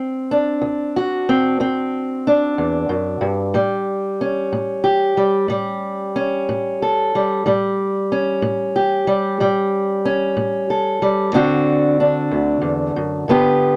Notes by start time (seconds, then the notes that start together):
Already playing: D2 C4
0.31 D4
0.62 D2
0.96 F#4
1.29 C4
1.60 D2 C4
2.27 D4
2.58 E2
2.89 F#2
3.21 G2
3.54 A2 G3
4.21 C#4
4.53 A2
4.84 G4
5.17 G3
5.48 A2 G3
6.16 C#4
6.49 A2
6.82 A4
7.15 G3
7.46 A2 G3
8.12 C#4
8.42 A2
8.76 G4
9.07 G3
9.40 A2 G3
10.05 C#4
10.37 A2
10.70 A4
11.02 G3
11.33 D2 D3 C4 D4 F#4
12.00 D4
12.31 D2
12.62 E2
12.96 F#2
13.28 G2 D3 B3 F4 G4